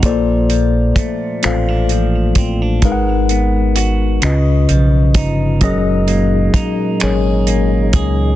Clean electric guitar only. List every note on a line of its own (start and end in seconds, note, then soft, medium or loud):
0.00 2.82 A#2 medium
0.00 0.50 F3 medium
0.00 0.13 D#4 medium
0.00 0.13 F#4 medium
0.50 1.90 F3 soft
0.97 2.92 A3 medium
1.45 1.68 C4 medium
1.68 2.37 D4 soft
1.92 2.84 F3 medium
2.38 2.62 C4 medium
2.62 2.93 D4 soft
2.84 4.69 G#3 medium
3.31 4.32 B3 soft
3.76 4.32 F#4 medium
4.22 5.71 C#3 medium
4.69 5.62 F3 medium
5.16 6.54 D#4 medium
5.62 8.36 F#3 medium
6.08 7.47 A#3 medium
6.54 8.36 D#4 medium
7.03 7.94 G#4 medium
7.47 8.36 A#3 medium
7.95 8.36 G#4 medium